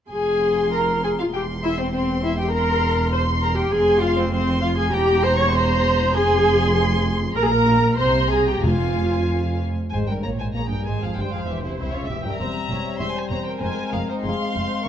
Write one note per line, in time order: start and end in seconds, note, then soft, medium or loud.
0.09 1.30 F1 medium
0.09 1.30 F2 medium
0.09 0.69 G#4 medium
0.09 0.69 G#5 medium
0.09 1.30 C6 medium
0.72 1.04 A#4 medium
0.72 0.80 A#5 medium
1.03 1.09 G#4 medium
1.03 1.10 G#5 medium
1.19 1.26 F4 medium
1.19 1.25 F5 medium
1.33 3.70 E1 medium
1.33 3.69 E2 medium
1.33 1.42 G4 medium
1.33 1.42 G5 medium
1.33 1.93 C6 medium
1.63 1.70 E4 medium
1.63 1.78 E5 medium
1.78 1.93 C4 medium
1.78 1.92 C5 medium
1.93 2.24 C4 medium
1.93 2.01 C5 medium
1.93 2.53 C6 medium
2.23 2.30 E4 medium
2.23 2.38 E5 medium
2.38 2.54 G4 medium
2.38 2.54 G5 medium
2.53 3.12 A#4 medium
2.53 3.12 A#5 medium
2.53 3.12 C6 medium
3.12 3.20 C5 medium
3.12 3.43 C6 medium
3.12 3.72 C6 medium
3.41 3.58 A#4 medium
3.41 3.57 A#5 medium
3.57 3.73 G4 medium
3.57 3.73 G5 medium
3.71 4.91 F1 medium
3.71 4.90 F2 medium
3.71 4.02 G#4 loud
3.71 4.03 G#5 medium
3.71 4.33 C6 medium
4.01 4.17 F4 medium
4.01 4.17 F5 medium
4.17 4.31 C4 medium
4.17 4.30 C5 medium
4.31 4.62 C4 medium
4.31 4.62 C5 medium
4.31 4.92 C6 medium
4.61 4.77 F4 medium
4.61 4.68 F5 medium
4.76 4.93 G#4 medium
4.76 4.92 G#5 medium
4.92 6.14 E1 medium
4.92 6.14 E2 medium
4.92 5.22 G4 loud
4.92 5.22 G5 medium
4.92 5.52 A#5 medium
5.22 5.38 C5 loud
5.22 5.38 C6 medium
5.36 5.53 C#5 loud
5.36 5.52 C#6 medium
5.51 6.13 C5 loud
5.51 6.13 A#5 medium
5.51 6.13 C6 medium
6.13 7.37 F1 medium
6.13 7.36 F2 medium
6.13 7.05 G#4 loud
6.13 7.03 G#5 medium
6.13 7.37 C6 medium
7.36 7.95 A#1 medium
7.36 7.95 A#2 medium
7.36 7.43 A#4 loud
7.36 7.95 A#5 medium
7.36 7.96 A#5 medium
7.44 7.51 G#4 medium
7.51 7.99 A#4 loud
7.98 8.64 C2 medium
7.98 8.63 C3 medium
7.98 8.31 C5 medium
7.98 8.62 A#5 medium
7.98 8.30 C6 medium
8.29 8.47 G#4 medium
8.29 8.46 G#5 medium
8.47 8.64 G4 medium
8.47 8.63 G5 medium
8.63 9.70 F1 medium
8.63 9.56 F2 medium
8.63 9.70 F2 medium
8.63 9.61 F4 medium
8.63 9.58 F5 medium
8.63 9.71 G#5 medium
9.92 10.07 G#1 medium
9.92 10.07 G#2 soft
9.92 10.07 G#3 medium
9.92 10.07 C5 soft
9.92 9.98 G#5 medium
10.07 10.24 G2 soft
10.07 10.24 G3 soft
10.07 10.24 A#4 soft
10.07 10.15 G5 soft
10.23 10.40 A#1 soft
10.23 10.39 A#2 soft
10.23 10.30 A#3 soft
10.23 10.40 C#5 soft
10.23 10.30 A#5 medium
10.38 10.55 G#2 soft
10.38 10.54 G#3 soft
10.38 10.46 C5 soft
10.38 10.46 G#5 soft
10.54 10.71 A#1 soft
10.54 10.70 A#2 soft
10.54 10.61 A#3 soft
10.54 11.13 G#4 soft
10.54 10.62 C#5 soft
10.54 10.70 A#5 medium
10.70 10.86 G2 soft
10.70 10.86 G3 soft
10.70 10.86 A#4 soft
10.70 10.86 G5 soft
10.86 11.02 G#1 soft
10.86 11.02 G#2 soft
10.86 11.02 G#3 soft
10.86 11.02 C5 soft
10.86 11.02 G#5 soft
11.01 11.17 F2 soft
11.01 11.18 F3 soft
11.01 11.18 G#4 soft
11.01 11.18 F5 soft
11.16 11.24 G1 medium
11.16 11.23 G2 medium
11.16 11.33 G3 medium
11.16 11.80 C5 soft
11.16 11.33 C5 soft
11.16 11.33 G5 medium
11.32 11.47 F2 soft
11.32 11.48 F3 soft
11.32 11.39 G#4 soft
11.32 11.49 F5 soft
11.48 11.64 E1 soft
11.48 11.64 E2 soft
11.48 11.65 E3 soft
11.48 11.64 G4 soft
11.48 11.64 E5 soft
11.63 11.77 C2 soft
11.63 11.79 C3 soft
11.63 11.78 E4 soft
11.63 11.77 C5 soft
11.78 11.94 C2 soft
11.78 11.95 C3 soft
11.78 11.94 E4 soft
11.78 11.94 C5 medium
11.78 12.40 E5 soft
11.93 12.10 C#2 soft
11.93 12.10 C#3 soft
11.93 12.09 F4 soft
11.93 12.10 C#5 soft
12.08 12.16 E1 soft
12.08 12.15 E2 soft
12.08 12.26 E3 soft
12.08 12.16 G4 soft
12.08 12.24 E5 medium
12.25 12.31 G2 soft
12.25 12.39 G3 soft
12.25 12.40 A#4 soft
12.25 12.40 G5 medium
12.39 12.48 E1 soft
12.39 12.48 E2 soft
12.39 13.57 G3 soft
12.39 14.81 C4 soft
12.39 12.48 C5 soft
12.39 12.98 E5 medium
12.39 12.98 A#5 medium
12.70 12.78 E1 soft
12.70 12.79 E2 soft
12.70 13.00 C#5 soft
12.99 13.08 E1 soft
12.99 13.08 E2 soft
12.99 13.61 C5 soft
12.99 13.05 E5 medium
12.99 13.15 C6 medium
13.15 13.21 C5 soft
13.15 13.30 G#5 medium
13.30 13.39 E1 soft
13.30 13.38 E2 soft
13.30 13.37 C#5 medium
13.30 13.45 A#5 medium
13.45 13.60 A#4 soft
13.45 13.52 G5 medium
13.60 13.69 F1 medium
13.60 13.68 F2 medium
13.60 14.88 G#3 medium
13.60 14.24 A#4 medium
13.60 13.92 C5 medium
13.60 13.91 G#5 medium
13.91 14.01 F1 medium
13.91 14.00 F2 soft
13.91 13.98 G#4 medium
13.91 14.08 F5 medium
14.08 14.24 D#4 medium
14.08 14.15 C5 medium
14.24 14.32 F1 medium
14.24 14.32 F2 soft
14.24 14.54 G#4 soft
14.24 14.83 F5 medium
14.24 14.84 C6 medium
14.54 14.63 F1 soft
14.54 14.62 F2 soft
14.54 14.84 C5 medium
14.84 14.88 C#3 medium
14.84 14.88 A#3 medium
14.84 14.88 A#4 medium
14.84 14.88 F5 medium